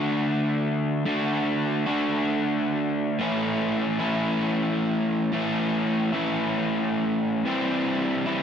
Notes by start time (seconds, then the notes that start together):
Already playing: D3 A3 D4 F#4
1.05 D3 A3 D4 F#4
1.86 D3 A3 D4 F#4
3.19 A2 E3 A3 C#4 E4
3.99 A2 E3 A3 C#4 E4
5.33 A2 E3 A3 C#4 E4
6.12 A2 E3 A3 C#4 E4
7.45 C3 E3 G3 C4 E4
8.26 C3 E3 G3 C4 E4